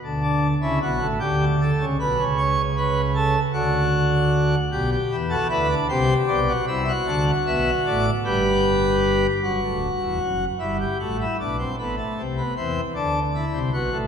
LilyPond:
<<
  \new Staff \with { instrumentName = "Pipe organ" } { \time 6/8 \key d \mixolydian \tempo 4. = 51 << { r2. | r2. | r16 g'8 a'16 b'8 c''8 d''8 e''8 | fis''8 e''8 d''8 b'4. |
r2. | r2. | } \\ { r16 d'8 e'16 fis'8 g'8 a'8 b'8 | cis''8 b'8 a'8 fis'4. | g'8. fis'16 e'16 d'16 g'8. fis'16 e'16 fis'16~ | fis'4. g'4. |
fis'4. e'16 g'16 fis'16 e'16 d'16 c'16 | b16 a8 b16 c'8 d'8 e'8 fis'8 | } >> }
  \new Staff \with { instrumentName = "Pipe organ" } { \clef bass \time 6/8 \key d \mixolydian <d, d>8. <cis, cis>16 <b,, b,>16 <a,, a,>16 <d, d>8. <cis, cis>16 <b,, b,>16 <cis, cis>16~ | <cis, cis>4. <d, d>4. | <b,, b,>8 <e, e>8 <d, d>8 <c, c>8 <b,, b,>8 <c, c>8 | <d, d>8 <b,, b,>8 <a,, a,>8 <g,, g,>4. |
<fis,, fis,>16 <d,, d,>8 <e,, e,>16 <fis,, fis,>8 <g,, g,>8 <a,, a,>8 <b,, b,>8 | <a,, a,>8 <c, c>8 <e, e>8 <d, d>8. <c, c>16 <b,, b,>16 <a,, a,>16 | }
>>